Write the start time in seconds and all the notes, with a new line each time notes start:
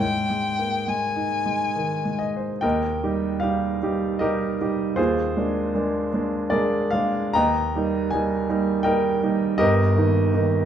0.00 G#2 G5
0.30 G#3
0.59 A#3
0.88 G#3 G#5
1.16 D#4
1.46 G#3
1.76 D#3
2.05 G#3
2.19 D#5
2.36 C5
2.61 D#2 A#4 D#5 G5
3.03 G3 D#4 G4
3.40 G3 D#4 G4 F5
3.83 G3 D#4 G4
4.19 G3 D#4 G4 A#4 D#5
4.61 G3 D#4 G4
4.96 D#2 F4 G#4 C5
5.37 G#3 A#3 D4
5.75 G#3 A#3 D4
6.14 G#3 A#3 D4
6.50 G#3 A#3 D4 G#4 A#4 D5
6.91 G#3 A#3 D4 F5
7.33 D#2 D#5 G5 A#5
7.76 G3 A#3 D#4
8.10 G3 A#3 D#4 G#5
8.49 G3 A#3 D#4
8.83 G3 A#3 D#4 A#4 D#5 G5
9.23 G3 A#3 D#4
9.58 G1 G4 A#4 D#5
9.96 D#3 A#3 D#4
10.34 D#3 A#3 D#4